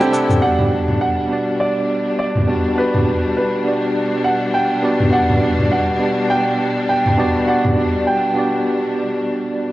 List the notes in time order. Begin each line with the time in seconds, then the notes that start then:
Already playing: C3 G3 A3 E4 D5 G5
0.00 C4 D4 G4 A4 C5, high bongo, shaker
0.12 C4 D4 G4 A4 F#5, shaker
0.30 mid tom, shaker
0.40 B2 G3 B3 D4 F#4 G4 F#5
0.44 D5
0.59 mid tom
0.88 mid tom
1.01 F#5
1.28 B3 D4 F#4 G4
1.33 D5
1.60 D5
2.19 D5
2.35 mid tom
2.47 B3 D4 F#4 G4 D5
2.75 B3 D4 F#4 G4 B4
2.80 D5
2.94 mid tom
3.37 B4
3.64 B3 D4 F#4 G4
3.68 D5
4.25 F#5
4.54 G5
4.83 B3 D4 F#4 G4 D5
5.00 mid tom
5.11 B3 D4 F#4 G4 F#5
5.15 D5
5.30 mid tom
5.59 mid tom
5.72 F#5
5.99 B3 D4 G4
6.04 D5
6.30 G5
6.89 G5
7.06 mid tom
7.17 B3 D4 F#4 G4 D5
7.46 B3 D4 F#4 G4 F#5
7.50 D5
7.65 mid tom
8.07 G5
8.34 B3 D4 F#4 G4
8.39 D5